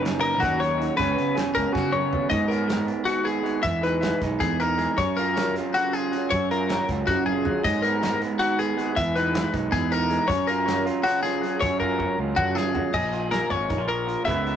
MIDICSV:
0, 0, Header, 1, 5, 480
1, 0, Start_track
1, 0, Key_signature, 6, "major"
1, 0, Tempo, 379747
1, 1248, Time_signature, 7, 3, 24, 8
1, 18404, End_track
2, 0, Start_track
2, 0, Title_t, "Clean electric guitar"
2, 0, Program_c, 0, 27
2, 260, Note_on_c, 0, 70, 78
2, 505, Note_on_c, 0, 66, 75
2, 514, Note_off_c, 0, 70, 0
2, 756, Note_off_c, 0, 66, 0
2, 759, Note_on_c, 0, 73, 74
2, 1221, Note_off_c, 0, 73, 0
2, 1226, Note_on_c, 0, 71, 89
2, 1716, Note_off_c, 0, 71, 0
2, 1956, Note_on_c, 0, 70, 72
2, 2183, Note_off_c, 0, 70, 0
2, 2183, Note_on_c, 0, 66, 77
2, 2434, Note_on_c, 0, 73, 75
2, 2435, Note_off_c, 0, 66, 0
2, 2898, Note_off_c, 0, 73, 0
2, 2903, Note_on_c, 0, 75, 91
2, 3138, Note_on_c, 0, 70, 67
2, 3155, Note_off_c, 0, 75, 0
2, 3633, Note_off_c, 0, 70, 0
2, 3860, Note_on_c, 0, 66, 76
2, 4107, Note_on_c, 0, 68, 71
2, 4114, Note_off_c, 0, 66, 0
2, 4586, Note_on_c, 0, 76, 95
2, 4598, Note_off_c, 0, 68, 0
2, 4837, Note_off_c, 0, 76, 0
2, 4845, Note_on_c, 0, 71, 69
2, 5327, Note_off_c, 0, 71, 0
2, 5564, Note_on_c, 0, 68, 74
2, 5812, Note_off_c, 0, 68, 0
2, 5812, Note_on_c, 0, 70, 76
2, 6292, Note_off_c, 0, 70, 0
2, 6292, Note_on_c, 0, 73, 89
2, 6531, Note_on_c, 0, 70, 72
2, 6532, Note_off_c, 0, 73, 0
2, 7011, Note_off_c, 0, 70, 0
2, 7258, Note_on_c, 0, 66, 77
2, 7500, Note_off_c, 0, 66, 0
2, 7500, Note_on_c, 0, 68, 71
2, 7970, Note_on_c, 0, 73, 91
2, 7976, Note_off_c, 0, 68, 0
2, 8211, Note_off_c, 0, 73, 0
2, 8231, Note_on_c, 0, 70, 72
2, 8702, Note_off_c, 0, 70, 0
2, 8937, Note_on_c, 0, 66, 73
2, 9170, Note_off_c, 0, 66, 0
2, 9175, Note_on_c, 0, 68, 71
2, 9654, Note_off_c, 0, 68, 0
2, 9662, Note_on_c, 0, 75, 84
2, 9888, Note_on_c, 0, 70, 77
2, 9897, Note_off_c, 0, 75, 0
2, 10369, Note_off_c, 0, 70, 0
2, 10609, Note_on_c, 0, 66, 73
2, 10849, Note_off_c, 0, 66, 0
2, 10856, Note_on_c, 0, 68, 75
2, 11331, Note_on_c, 0, 76, 93
2, 11332, Note_off_c, 0, 68, 0
2, 11570, Note_off_c, 0, 76, 0
2, 11573, Note_on_c, 0, 71, 71
2, 12049, Note_off_c, 0, 71, 0
2, 12288, Note_on_c, 0, 68, 77
2, 12537, Note_off_c, 0, 68, 0
2, 12537, Note_on_c, 0, 70, 76
2, 12991, Note_on_c, 0, 73, 91
2, 13009, Note_off_c, 0, 70, 0
2, 13237, Note_off_c, 0, 73, 0
2, 13240, Note_on_c, 0, 70, 75
2, 13719, Note_off_c, 0, 70, 0
2, 13948, Note_on_c, 0, 66, 78
2, 14185, Note_off_c, 0, 66, 0
2, 14190, Note_on_c, 0, 68, 77
2, 14670, Note_on_c, 0, 73, 98
2, 14673, Note_off_c, 0, 68, 0
2, 14907, Note_off_c, 0, 73, 0
2, 14912, Note_on_c, 0, 70, 73
2, 15394, Note_off_c, 0, 70, 0
2, 15628, Note_on_c, 0, 66, 77
2, 15865, Note_off_c, 0, 66, 0
2, 15865, Note_on_c, 0, 68, 78
2, 16351, Note_off_c, 0, 68, 0
2, 16355, Note_on_c, 0, 75, 84
2, 16822, Note_off_c, 0, 75, 0
2, 16827, Note_on_c, 0, 70, 74
2, 17068, Note_off_c, 0, 70, 0
2, 17068, Note_on_c, 0, 73, 66
2, 17545, Note_off_c, 0, 73, 0
2, 17550, Note_on_c, 0, 70, 65
2, 18008, Note_off_c, 0, 70, 0
2, 18013, Note_on_c, 0, 76, 86
2, 18404, Note_off_c, 0, 76, 0
2, 18404, End_track
3, 0, Start_track
3, 0, Title_t, "Clean electric guitar"
3, 0, Program_c, 1, 27
3, 0, Note_on_c, 1, 42, 83
3, 0, Note_on_c, 1, 54, 63
3, 0, Note_on_c, 1, 63, 57
3, 19, Note_on_c, 1, 70, 59
3, 288, Note_on_c, 1, 75, 57
3, 513, Note_off_c, 1, 70, 0
3, 527, Note_on_c, 1, 70, 66
3, 772, Note_off_c, 1, 54, 0
3, 777, Note_on_c, 1, 54, 62
3, 992, Note_off_c, 1, 63, 0
3, 1007, Note_on_c, 1, 63, 56
3, 1217, Note_on_c, 1, 49, 85
3, 1218, Note_off_c, 1, 63, 0
3, 1218, Note_off_c, 1, 70, 0
3, 1218, Note_off_c, 1, 75, 0
3, 1229, Note_off_c, 1, 54, 0
3, 1234, Note_on_c, 1, 54, 69
3, 1242, Note_off_c, 1, 42, 0
3, 1242, Note_on_c, 1, 59, 66
3, 1249, Note_on_c, 1, 68, 64
3, 1256, Note_on_c, 1, 73, 75
3, 1438, Note_off_c, 1, 59, 0
3, 1453, Note_on_c, 1, 59, 54
3, 1695, Note_off_c, 1, 68, 0
3, 1710, Note_on_c, 1, 68, 63
3, 1947, Note_off_c, 1, 73, 0
3, 1952, Note_on_c, 1, 70, 58
3, 2169, Note_off_c, 1, 68, 0
3, 2185, Note_on_c, 1, 68, 61
3, 2406, Note_off_c, 1, 54, 0
3, 2421, Note_on_c, 1, 54, 63
3, 2666, Note_off_c, 1, 59, 0
3, 2681, Note_on_c, 1, 59, 56
3, 2887, Note_off_c, 1, 68, 0
3, 2890, Note_off_c, 1, 70, 0
3, 2896, Note_on_c, 1, 44, 76
3, 2911, Note_off_c, 1, 49, 0
3, 3140, Note_off_c, 1, 59, 0
3, 3155, Note_on_c, 1, 59, 59
3, 3373, Note_off_c, 1, 54, 0
3, 3378, Note_on_c, 1, 56, 62
3, 3593, Note_off_c, 1, 59, 0
3, 3598, Note_on_c, 1, 59, 61
3, 3847, Note_on_c, 1, 51, 61
3, 4077, Note_off_c, 1, 59, 0
3, 4092, Note_on_c, 1, 59, 57
3, 4331, Note_off_c, 1, 56, 0
3, 4336, Note_on_c, 1, 56, 59
3, 4559, Note_off_c, 1, 51, 0
3, 4564, Note_off_c, 1, 44, 0
3, 4585, Note_on_c, 1, 52, 83
3, 4819, Note_off_c, 1, 59, 0
3, 4824, Note_on_c, 1, 63, 57
3, 5095, Note_off_c, 1, 56, 0
3, 5100, Note_on_c, 1, 56, 69
3, 5317, Note_off_c, 1, 63, 0
3, 5355, Note_on_c, 1, 63, 61
3, 5582, Note_on_c, 1, 47, 67
3, 5810, Note_off_c, 1, 63, 0
3, 5825, Note_on_c, 1, 63, 57
3, 6037, Note_off_c, 1, 56, 0
3, 6043, Note_on_c, 1, 56, 62
3, 6250, Note_off_c, 1, 52, 0
3, 6268, Note_off_c, 1, 47, 0
3, 6269, Note_off_c, 1, 63, 0
3, 6286, Note_on_c, 1, 42, 81
3, 6324, Note_off_c, 1, 56, 0
3, 6555, Note_on_c, 1, 65, 60
3, 6799, Note_on_c, 1, 54, 65
3, 7048, Note_off_c, 1, 65, 0
3, 7053, Note_on_c, 1, 65, 61
3, 7294, Note_on_c, 1, 49, 61
3, 7513, Note_off_c, 1, 65, 0
3, 7546, Note_on_c, 1, 65, 61
3, 7753, Note_off_c, 1, 49, 0
3, 7759, Note_off_c, 1, 54, 0
3, 7764, Note_on_c, 1, 54, 67
3, 7970, Note_off_c, 1, 42, 0
3, 7971, Note_off_c, 1, 65, 0
3, 7999, Note_on_c, 1, 42, 76
3, 8235, Note_on_c, 1, 65, 58
3, 8467, Note_off_c, 1, 54, 0
3, 8472, Note_on_c, 1, 54, 63
3, 8704, Note_off_c, 1, 65, 0
3, 8720, Note_on_c, 1, 65, 60
3, 8963, Note_on_c, 1, 49, 69
3, 9186, Note_off_c, 1, 65, 0
3, 9212, Note_on_c, 1, 65, 62
3, 9427, Note_off_c, 1, 49, 0
3, 9443, Note_off_c, 1, 54, 0
3, 9448, Note_on_c, 1, 54, 58
3, 9643, Note_off_c, 1, 65, 0
3, 9665, Note_off_c, 1, 42, 0
3, 9679, Note_on_c, 1, 44, 84
3, 9935, Note_on_c, 1, 59, 59
3, 10144, Note_off_c, 1, 54, 0
3, 10149, Note_on_c, 1, 56, 65
3, 10389, Note_off_c, 1, 59, 0
3, 10394, Note_on_c, 1, 59, 62
3, 10605, Note_on_c, 1, 51, 66
3, 10844, Note_off_c, 1, 59, 0
3, 10859, Note_on_c, 1, 59, 61
3, 11081, Note_off_c, 1, 56, 0
3, 11086, Note_on_c, 1, 56, 65
3, 11297, Note_off_c, 1, 51, 0
3, 11314, Note_off_c, 1, 44, 0
3, 11332, Note_on_c, 1, 52, 78
3, 11573, Note_off_c, 1, 59, 0
3, 11580, Note_on_c, 1, 63, 60
3, 11800, Note_off_c, 1, 56, 0
3, 11805, Note_on_c, 1, 56, 67
3, 12022, Note_off_c, 1, 63, 0
3, 12037, Note_on_c, 1, 63, 63
3, 12272, Note_on_c, 1, 47, 66
3, 12508, Note_off_c, 1, 63, 0
3, 12523, Note_on_c, 1, 63, 63
3, 12769, Note_off_c, 1, 56, 0
3, 12774, Note_on_c, 1, 56, 64
3, 12968, Note_off_c, 1, 47, 0
3, 12974, Note_off_c, 1, 63, 0
3, 12976, Note_off_c, 1, 52, 0
3, 12991, Note_on_c, 1, 42, 83
3, 13028, Note_off_c, 1, 56, 0
3, 13259, Note_on_c, 1, 65, 59
3, 13468, Note_on_c, 1, 54, 67
3, 13717, Note_off_c, 1, 65, 0
3, 13722, Note_on_c, 1, 65, 63
3, 13947, Note_on_c, 1, 49, 69
3, 14194, Note_off_c, 1, 65, 0
3, 14199, Note_on_c, 1, 65, 64
3, 14429, Note_off_c, 1, 54, 0
3, 14432, Note_off_c, 1, 49, 0
3, 14444, Note_on_c, 1, 54, 64
3, 14671, Note_off_c, 1, 42, 0
3, 14691, Note_on_c, 1, 42, 79
3, 14729, Note_off_c, 1, 65, 0
3, 14933, Note_on_c, 1, 65, 60
3, 15121, Note_off_c, 1, 54, 0
3, 15136, Note_on_c, 1, 54, 67
3, 15401, Note_off_c, 1, 65, 0
3, 15416, Note_on_c, 1, 65, 62
3, 15643, Note_on_c, 1, 49, 66
3, 15851, Note_off_c, 1, 65, 0
3, 15866, Note_on_c, 1, 65, 65
3, 16091, Note_off_c, 1, 54, 0
3, 16106, Note_on_c, 1, 54, 65
3, 16120, Note_off_c, 1, 49, 0
3, 16323, Note_off_c, 1, 65, 0
3, 16340, Note_off_c, 1, 42, 0
3, 16345, Note_on_c, 1, 46, 70
3, 16352, Note_off_c, 1, 54, 0
3, 16356, Note_on_c, 1, 68, 66
3, 16584, Note_on_c, 1, 65, 54
3, 16821, Note_off_c, 1, 68, 0
3, 16826, Note_on_c, 1, 68, 54
3, 17061, Note_on_c, 1, 58, 61
3, 17305, Note_off_c, 1, 65, 0
3, 17310, Note_on_c, 1, 63, 56
3, 17419, Note_off_c, 1, 63, 0
3, 17419, Note_on_c, 1, 65, 48
3, 17531, Note_off_c, 1, 68, 0
3, 17536, Note_on_c, 1, 53, 57
3, 17536, Note_on_c, 1, 70, 55
3, 17764, Note_off_c, 1, 65, 0
3, 17780, Note_on_c, 1, 65, 54
3, 18002, Note_off_c, 1, 70, 0
3, 18003, Note_off_c, 1, 53, 0
3, 18004, Note_off_c, 1, 65, 0
3, 18007, Note_off_c, 1, 58, 0
3, 18010, Note_off_c, 1, 46, 0
3, 18025, Note_on_c, 1, 49, 71
3, 18031, Note_on_c, 1, 56, 62
3, 18054, Note_on_c, 1, 59, 66
3, 18057, Note_on_c, 1, 64, 60
3, 18061, Note_on_c, 1, 71, 69
3, 18265, Note_off_c, 1, 64, 0
3, 18281, Note_on_c, 1, 64, 56
3, 18404, Note_off_c, 1, 49, 0
3, 18404, Note_off_c, 1, 56, 0
3, 18404, Note_off_c, 1, 59, 0
3, 18404, Note_off_c, 1, 64, 0
3, 18404, Note_off_c, 1, 71, 0
3, 18404, End_track
4, 0, Start_track
4, 0, Title_t, "Fingered electric bass"
4, 0, Program_c, 2, 33
4, 0, Note_on_c, 2, 30, 95
4, 539, Note_off_c, 2, 30, 0
4, 539, Note_on_c, 2, 39, 103
4, 1094, Note_off_c, 2, 39, 0
4, 1258, Note_on_c, 2, 37, 90
4, 1440, Note_off_c, 2, 37, 0
4, 1491, Note_on_c, 2, 49, 81
4, 1676, Note_off_c, 2, 49, 0
4, 1978, Note_on_c, 2, 37, 80
4, 2067, Note_off_c, 2, 37, 0
4, 2216, Note_on_c, 2, 49, 87
4, 2772, Note_off_c, 2, 49, 0
4, 2919, Note_on_c, 2, 44, 105
4, 3669, Note_off_c, 2, 44, 0
4, 4606, Note_on_c, 2, 40, 97
4, 5167, Note_off_c, 2, 40, 0
4, 5326, Note_on_c, 2, 35, 83
4, 5514, Note_off_c, 2, 35, 0
4, 5572, Note_on_c, 2, 40, 99
4, 6132, Note_off_c, 2, 40, 0
4, 6292, Note_on_c, 2, 42, 103
4, 7039, Note_off_c, 2, 42, 0
4, 7991, Note_on_c, 2, 42, 98
4, 8544, Note_off_c, 2, 42, 0
4, 8704, Note_on_c, 2, 37, 83
4, 8886, Note_off_c, 2, 37, 0
4, 8946, Note_on_c, 2, 42, 99
4, 9500, Note_off_c, 2, 42, 0
4, 9663, Note_on_c, 2, 44, 109
4, 10404, Note_off_c, 2, 44, 0
4, 11343, Note_on_c, 2, 40, 101
4, 11896, Note_off_c, 2, 40, 0
4, 12055, Note_on_c, 2, 35, 87
4, 12238, Note_off_c, 2, 35, 0
4, 12292, Note_on_c, 2, 40, 107
4, 12847, Note_off_c, 2, 40, 0
4, 13011, Note_on_c, 2, 42, 108
4, 13752, Note_off_c, 2, 42, 0
4, 14693, Note_on_c, 2, 42, 101
4, 15246, Note_off_c, 2, 42, 0
4, 15400, Note_on_c, 2, 37, 89
4, 15585, Note_off_c, 2, 37, 0
4, 15643, Note_on_c, 2, 42, 103
4, 16201, Note_off_c, 2, 42, 0
4, 16358, Note_on_c, 2, 34, 96
4, 16920, Note_off_c, 2, 34, 0
4, 17083, Note_on_c, 2, 32, 85
4, 17269, Note_off_c, 2, 32, 0
4, 17317, Note_on_c, 2, 34, 79
4, 17881, Note_off_c, 2, 34, 0
4, 18050, Note_on_c, 2, 37, 85
4, 18404, Note_off_c, 2, 37, 0
4, 18404, End_track
5, 0, Start_track
5, 0, Title_t, "Drums"
5, 67, Note_on_c, 9, 42, 92
5, 75, Note_on_c, 9, 38, 106
5, 193, Note_off_c, 9, 42, 0
5, 202, Note_off_c, 9, 38, 0
5, 304, Note_on_c, 9, 42, 61
5, 431, Note_off_c, 9, 42, 0
5, 537, Note_on_c, 9, 36, 106
5, 539, Note_on_c, 9, 42, 84
5, 548, Note_on_c, 9, 38, 31
5, 663, Note_off_c, 9, 36, 0
5, 665, Note_off_c, 9, 42, 0
5, 674, Note_off_c, 9, 38, 0
5, 785, Note_on_c, 9, 42, 62
5, 794, Note_on_c, 9, 38, 32
5, 912, Note_off_c, 9, 42, 0
5, 921, Note_off_c, 9, 38, 0
5, 1033, Note_on_c, 9, 42, 66
5, 1159, Note_off_c, 9, 42, 0
5, 1256, Note_on_c, 9, 36, 101
5, 1261, Note_on_c, 9, 42, 90
5, 1383, Note_off_c, 9, 36, 0
5, 1387, Note_off_c, 9, 42, 0
5, 1497, Note_on_c, 9, 42, 68
5, 1624, Note_off_c, 9, 42, 0
5, 1731, Note_on_c, 9, 42, 96
5, 1740, Note_on_c, 9, 38, 108
5, 1858, Note_off_c, 9, 42, 0
5, 1866, Note_off_c, 9, 38, 0
5, 1975, Note_on_c, 9, 36, 76
5, 1975, Note_on_c, 9, 42, 65
5, 1984, Note_on_c, 9, 38, 32
5, 2101, Note_off_c, 9, 42, 0
5, 2102, Note_off_c, 9, 36, 0
5, 2110, Note_off_c, 9, 38, 0
5, 2214, Note_on_c, 9, 36, 96
5, 2221, Note_on_c, 9, 38, 59
5, 2340, Note_off_c, 9, 36, 0
5, 2347, Note_off_c, 9, 38, 0
5, 2459, Note_on_c, 9, 47, 62
5, 2586, Note_off_c, 9, 47, 0
5, 2689, Note_on_c, 9, 43, 99
5, 2816, Note_off_c, 9, 43, 0
5, 2920, Note_on_c, 9, 42, 93
5, 2926, Note_on_c, 9, 36, 112
5, 3047, Note_off_c, 9, 42, 0
5, 3052, Note_off_c, 9, 36, 0
5, 3175, Note_on_c, 9, 42, 64
5, 3184, Note_on_c, 9, 38, 33
5, 3301, Note_off_c, 9, 42, 0
5, 3310, Note_off_c, 9, 38, 0
5, 3408, Note_on_c, 9, 42, 93
5, 3416, Note_on_c, 9, 38, 113
5, 3534, Note_off_c, 9, 42, 0
5, 3543, Note_off_c, 9, 38, 0
5, 3643, Note_on_c, 9, 42, 62
5, 3769, Note_off_c, 9, 42, 0
5, 3887, Note_on_c, 9, 42, 83
5, 4013, Note_off_c, 9, 42, 0
5, 4133, Note_on_c, 9, 42, 59
5, 4260, Note_off_c, 9, 42, 0
5, 4371, Note_on_c, 9, 42, 62
5, 4497, Note_off_c, 9, 42, 0
5, 4604, Note_on_c, 9, 42, 89
5, 4606, Note_on_c, 9, 36, 99
5, 4730, Note_off_c, 9, 42, 0
5, 4732, Note_off_c, 9, 36, 0
5, 4849, Note_on_c, 9, 42, 66
5, 4857, Note_on_c, 9, 38, 34
5, 4975, Note_off_c, 9, 42, 0
5, 4984, Note_off_c, 9, 38, 0
5, 5088, Note_on_c, 9, 42, 98
5, 5097, Note_on_c, 9, 38, 113
5, 5215, Note_off_c, 9, 42, 0
5, 5223, Note_off_c, 9, 38, 0
5, 5329, Note_on_c, 9, 42, 67
5, 5330, Note_on_c, 9, 36, 75
5, 5338, Note_on_c, 9, 38, 33
5, 5456, Note_off_c, 9, 36, 0
5, 5456, Note_off_c, 9, 42, 0
5, 5465, Note_off_c, 9, 38, 0
5, 5569, Note_on_c, 9, 36, 103
5, 5570, Note_on_c, 9, 42, 91
5, 5695, Note_off_c, 9, 36, 0
5, 5696, Note_off_c, 9, 42, 0
5, 5813, Note_on_c, 9, 42, 71
5, 5940, Note_off_c, 9, 42, 0
5, 6052, Note_on_c, 9, 42, 70
5, 6061, Note_on_c, 9, 38, 35
5, 6178, Note_off_c, 9, 42, 0
5, 6187, Note_off_c, 9, 38, 0
5, 6292, Note_on_c, 9, 42, 95
5, 6296, Note_on_c, 9, 36, 110
5, 6419, Note_off_c, 9, 42, 0
5, 6423, Note_off_c, 9, 36, 0
5, 6548, Note_on_c, 9, 42, 70
5, 6674, Note_off_c, 9, 42, 0
5, 6786, Note_on_c, 9, 42, 96
5, 6794, Note_on_c, 9, 38, 113
5, 6912, Note_off_c, 9, 42, 0
5, 6921, Note_off_c, 9, 38, 0
5, 7025, Note_on_c, 9, 42, 71
5, 7034, Note_on_c, 9, 38, 33
5, 7152, Note_off_c, 9, 42, 0
5, 7161, Note_off_c, 9, 38, 0
5, 7269, Note_on_c, 9, 42, 88
5, 7395, Note_off_c, 9, 42, 0
5, 7506, Note_on_c, 9, 42, 62
5, 7633, Note_off_c, 9, 42, 0
5, 7745, Note_on_c, 9, 42, 69
5, 7872, Note_off_c, 9, 42, 0
5, 7981, Note_on_c, 9, 42, 89
5, 7987, Note_on_c, 9, 36, 108
5, 8108, Note_off_c, 9, 42, 0
5, 8114, Note_off_c, 9, 36, 0
5, 8230, Note_on_c, 9, 42, 62
5, 8357, Note_off_c, 9, 42, 0
5, 8463, Note_on_c, 9, 42, 93
5, 8472, Note_on_c, 9, 38, 118
5, 8590, Note_off_c, 9, 42, 0
5, 8599, Note_off_c, 9, 38, 0
5, 8704, Note_on_c, 9, 42, 67
5, 8709, Note_on_c, 9, 36, 76
5, 8713, Note_on_c, 9, 38, 35
5, 8830, Note_off_c, 9, 42, 0
5, 8835, Note_off_c, 9, 36, 0
5, 8839, Note_off_c, 9, 38, 0
5, 8948, Note_on_c, 9, 36, 105
5, 8950, Note_on_c, 9, 38, 58
5, 9074, Note_off_c, 9, 36, 0
5, 9076, Note_off_c, 9, 38, 0
5, 9180, Note_on_c, 9, 47, 61
5, 9306, Note_off_c, 9, 47, 0
5, 9420, Note_on_c, 9, 43, 105
5, 9546, Note_off_c, 9, 43, 0
5, 9660, Note_on_c, 9, 42, 93
5, 9660, Note_on_c, 9, 55, 84
5, 9666, Note_on_c, 9, 36, 107
5, 9787, Note_off_c, 9, 42, 0
5, 9787, Note_off_c, 9, 55, 0
5, 9792, Note_off_c, 9, 36, 0
5, 9905, Note_on_c, 9, 42, 70
5, 10031, Note_off_c, 9, 42, 0
5, 10148, Note_on_c, 9, 42, 100
5, 10156, Note_on_c, 9, 38, 117
5, 10274, Note_off_c, 9, 42, 0
5, 10283, Note_off_c, 9, 38, 0
5, 10388, Note_on_c, 9, 42, 71
5, 10514, Note_off_c, 9, 42, 0
5, 10627, Note_on_c, 9, 42, 91
5, 10754, Note_off_c, 9, 42, 0
5, 10864, Note_on_c, 9, 42, 64
5, 10990, Note_off_c, 9, 42, 0
5, 11105, Note_on_c, 9, 42, 69
5, 11232, Note_off_c, 9, 42, 0
5, 11340, Note_on_c, 9, 36, 111
5, 11348, Note_on_c, 9, 42, 92
5, 11466, Note_off_c, 9, 36, 0
5, 11474, Note_off_c, 9, 42, 0
5, 11583, Note_on_c, 9, 42, 66
5, 11592, Note_on_c, 9, 38, 34
5, 11710, Note_off_c, 9, 42, 0
5, 11719, Note_off_c, 9, 38, 0
5, 11814, Note_on_c, 9, 42, 91
5, 11823, Note_on_c, 9, 38, 121
5, 11940, Note_off_c, 9, 42, 0
5, 11949, Note_off_c, 9, 38, 0
5, 12054, Note_on_c, 9, 36, 78
5, 12055, Note_on_c, 9, 42, 65
5, 12064, Note_on_c, 9, 38, 33
5, 12181, Note_off_c, 9, 36, 0
5, 12182, Note_off_c, 9, 42, 0
5, 12190, Note_off_c, 9, 38, 0
5, 12294, Note_on_c, 9, 36, 99
5, 12295, Note_on_c, 9, 42, 88
5, 12304, Note_on_c, 9, 38, 34
5, 12420, Note_off_c, 9, 36, 0
5, 12421, Note_off_c, 9, 42, 0
5, 12430, Note_off_c, 9, 38, 0
5, 12537, Note_on_c, 9, 42, 65
5, 12663, Note_off_c, 9, 42, 0
5, 12774, Note_on_c, 9, 42, 66
5, 12783, Note_on_c, 9, 38, 34
5, 12901, Note_off_c, 9, 42, 0
5, 12909, Note_off_c, 9, 38, 0
5, 13012, Note_on_c, 9, 42, 94
5, 13013, Note_on_c, 9, 36, 110
5, 13139, Note_off_c, 9, 42, 0
5, 13140, Note_off_c, 9, 36, 0
5, 13258, Note_on_c, 9, 42, 68
5, 13385, Note_off_c, 9, 42, 0
5, 13498, Note_on_c, 9, 42, 103
5, 13507, Note_on_c, 9, 38, 111
5, 13624, Note_off_c, 9, 42, 0
5, 13633, Note_off_c, 9, 38, 0
5, 13737, Note_on_c, 9, 42, 70
5, 13863, Note_off_c, 9, 42, 0
5, 13975, Note_on_c, 9, 42, 93
5, 14102, Note_off_c, 9, 42, 0
5, 14218, Note_on_c, 9, 42, 67
5, 14227, Note_on_c, 9, 38, 33
5, 14344, Note_off_c, 9, 42, 0
5, 14353, Note_off_c, 9, 38, 0
5, 14453, Note_on_c, 9, 42, 75
5, 14579, Note_off_c, 9, 42, 0
5, 14690, Note_on_c, 9, 36, 117
5, 14695, Note_on_c, 9, 42, 100
5, 14817, Note_off_c, 9, 36, 0
5, 14821, Note_off_c, 9, 42, 0
5, 14928, Note_on_c, 9, 36, 60
5, 15054, Note_off_c, 9, 36, 0
5, 15166, Note_on_c, 9, 36, 62
5, 15293, Note_off_c, 9, 36, 0
5, 15634, Note_on_c, 9, 45, 77
5, 15642, Note_on_c, 9, 36, 106
5, 15760, Note_off_c, 9, 45, 0
5, 15769, Note_off_c, 9, 36, 0
5, 15885, Note_on_c, 9, 38, 83
5, 16011, Note_off_c, 9, 38, 0
5, 16117, Note_on_c, 9, 43, 88
5, 16243, Note_off_c, 9, 43, 0
5, 16347, Note_on_c, 9, 49, 84
5, 16358, Note_on_c, 9, 36, 103
5, 16474, Note_off_c, 9, 49, 0
5, 16484, Note_off_c, 9, 36, 0
5, 16592, Note_on_c, 9, 42, 53
5, 16718, Note_off_c, 9, 42, 0
5, 16828, Note_on_c, 9, 42, 79
5, 16837, Note_on_c, 9, 38, 97
5, 16954, Note_off_c, 9, 42, 0
5, 16963, Note_off_c, 9, 38, 0
5, 17071, Note_on_c, 9, 42, 54
5, 17080, Note_on_c, 9, 36, 72
5, 17197, Note_off_c, 9, 42, 0
5, 17206, Note_off_c, 9, 36, 0
5, 17316, Note_on_c, 9, 42, 73
5, 17320, Note_on_c, 9, 36, 92
5, 17442, Note_off_c, 9, 42, 0
5, 17446, Note_off_c, 9, 36, 0
5, 17554, Note_on_c, 9, 42, 52
5, 17681, Note_off_c, 9, 42, 0
5, 17805, Note_on_c, 9, 42, 60
5, 17931, Note_off_c, 9, 42, 0
5, 18047, Note_on_c, 9, 42, 80
5, 18048, Note_on_c, 9, 36, 104
5, 18174, Note_off_c, 9, 36, 0
5, 18174, Note_off_c, 9, 42, 0
5, 18288, Note_on_c, 9, 42, 59
5, 18404, Note_off_c, 9, 42, 0
5, 18404, End_track
0, 0, End_of_file